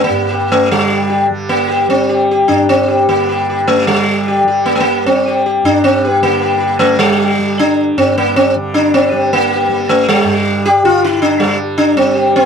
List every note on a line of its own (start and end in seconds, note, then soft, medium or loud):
0.00 0.70 D3 medium
0.00 1.29 G3 medium
0.00 0.51 A#3 medium
0.09 2.48 G2 medium
0.30 0.48 G4 soft
0.52 0.69 A3 medium
0.71 3.07 D3 medium
0.71 1.26 G3 medium
0.90 1.08 G4 soft
1.10 1.28 G4 soft
1.29 1.88 G3 medium
1.49 1.89 A#3 medium
1.68 1.87 G4 soft
1.88 3.68 G3 medium
1.88 2.27 C4 medium
2.09 2.28 G4 soft
2.31 2.47 G4 soft
2.48 5.63 G2 medium
2.48 2.69 D4 medium
2.48 2.67 G4 soft
2.69 3.08 C4 medium
2.88 3.07 G4 soft
3.07 3.87 D3 medium
3.07 3.70 A#3 medium
3.29 3.47 G4 soft
3.49 3.67 G4 soft
3.68 4.44 G3 medium
3.68 3.87 A3 medium
3.87 6.22 D3 medium
3.87 4.43 G3 medium
4.28 4.46 G4 soft
4.44 5.05 G3 medium
4.48 4.66 G4 soft
4.66 4.73 A#3 medium
4.75 4.81 A3 medium
4.80 5.06 A#3 medium
5.05 6.80 G3 medium
5.05 5.43 C4 medium
5.28 5.45 G4 soft
5.46 5.64 G4 soft
5.64 7.97 G2 medium
5.64 5.84 D4 medium
5.84 6.11 C4 medium
6.05 6.22 G4 soft
6.11 6.22 A#3 medium
6.22 8.55 D3 medium
6.22 6.83 A#3 medium
6.41 6.59 G4 soft
6.60 6.79 G4 soft
6.79 7.38 G3 medium
6.79 6.98 A3 medium
6.99 7.60 G3 medium
7.19 7.38 G4 soft
7.38 9.13 G3 medium
7.59 7.97 D4 medium
7.97 10.24 G2 medium
7.97 8.17 C4 medium
8.18 8.36 A#3 medium
8.36 8.54 C4 medium
8.55 10.82 D3 medium
8.74 8.92 D4 medium
8.94 9.33 C4 medium
9.11 9.68 G3 medium
9.11 9.30 G4 soft
9.33 9.91 A#3 medium
9.52 9.69 G4 soft
9.68 11.40 G3 medium
9.89 10.08 A3 medium
10.09 10.67 G3 medium
10.24 12.45 G2 medium
10.66 10.85 G4 medium
10.83 12.45 D3 medium
10.83 11.02 F4 loud
11.04 11.21 E4 medium
11.22 11.41 D4 medium
11.40 11.96 G3 medium
11.40 11.58 G3 medium
11.78 11.97 D4 medium
11.96 12.45 G3 medium
11.96 12.35 C4 medium
12.15 12.33 G4 soft
12.36 12.45 A#3 medium